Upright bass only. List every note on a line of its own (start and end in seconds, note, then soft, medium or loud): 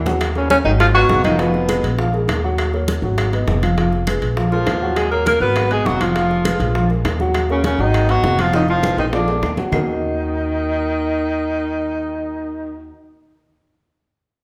0.00 0.59 D#2 medium
0.65 1.06 G#1 medium
1.09 1.78 F1 medium
1.83 2.25 A#1 medium
2.28 2.97 D#2 medium
3.02 3.44 G#1 medium
3.47 4.16 F1 medium
4.22 4.63 A#1 medium
4.66 5.35 D#2 medium
5.40 5.82 G#1 medium
5.85 6.54 F1 medium
6.60 7.01 A#1 medium
7.04 7.73 D#2 medium
7.79 8.20 G#1 medium
8.23 8.92 F1 medium
8.97 9.39 A#1 medium
9.42 9.69 D#2 medium
9.72 12.90 D#2 medium